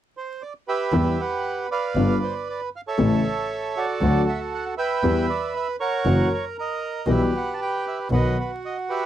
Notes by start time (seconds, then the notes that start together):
0.17 C5
0.42 D5
0.68 G4 B4 E5
0.92 E2 E3 G3 B3 G4
1.20 B4 F#5
1.71 B4 D5 F5
1.95 G1 G2 D3 G3 B3 F4
2.23 C5
2.50 D5
2.76 F5
2.88 A4 C#5 E5
2.98 A1 A2 C#3 E3 A3 E4
3.76 F#4 A4 D5
4.00 D2 D3 F#3 A3 F#4
4.29 E5
4.54 F#5
4.77 B4 E5 G5
5.03 E2 E3 G3 B3 G4
5.30 D5
5.56 E5
5.80 A#4 C#5 F#5
6.05 F#1 F#2 E3 F#3 A#3 C#4 F#4
6.34 C#5
6.58 A#4 D#5
7.07 B1 B2 E3 G3 B3 G4 B4
7.11 E5
7.37 F#5
7.54 A5
7.62 G5
7.88 E5
8.10 B1 B2 D#3 F#3 B3 F#4 B4
8.14 D#5
8.40 B4
8.65 D#5
8.90 G4 B4 E5